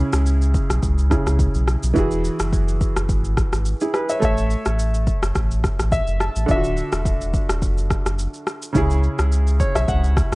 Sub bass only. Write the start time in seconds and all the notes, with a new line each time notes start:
0.13 C#2
0.70 B1
0.83 C#2
1.26 C#2
1.55 B1
1.83 B1
1.96 E1
2.40 F#1
2.96 F#1
3.09 G#1
3.53 G#1
4.22 A1
4.66 A1
5.23 F#1
5.35 A1
5.79 A1
6.08 F#1
6.36 A1
6.49 D1
6.93 E1
7.49 E1
7.62 F#1
8.06 F#1
8.75 C#2
9.19 C#2
9.75 B1
9.88 C#2
10.32 C#2